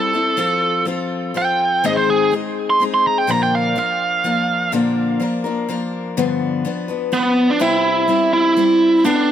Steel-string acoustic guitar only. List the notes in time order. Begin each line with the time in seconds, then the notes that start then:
Already playing: G3 C4 E4 A4
0.13 G3 C4 E4 A4
0.37 F3 C4 F4 A4
0.85 F3 C4 F4 A4
1.34 F3 C4 F4 A4
1.84 G#2 D#3 G#3 C4 D#4 G#4
2.31 G#3 C4 D#4 G#4
2.80 G#3 C4 D#4 G#4
3.27 A#2 D3 F3 A#3 D4 A#4
3.76 F3 A#3 D4 A#4
4.24 F3 A#3 D4 A#4
4.72 A#2 D3 F3 A#3 D4 A#4
5.20 F3 A#3 D4 A#4
5.44 F3 A#3 D4 A#4
5.69 F3 A#3 D4 A#4
6.17 G2 D3 F3 B3 D4 B4
6.65 F3 B3 D4 B4
6.88 F3 B3 D4 B4
7.12 F3 B3 D4 B4
7.60 C3 G3 C4 E4 G4
8.08 G3 C4 E4 G4
8.57 G3 C4 E4 G4
9.04 B3 D4 G4 A4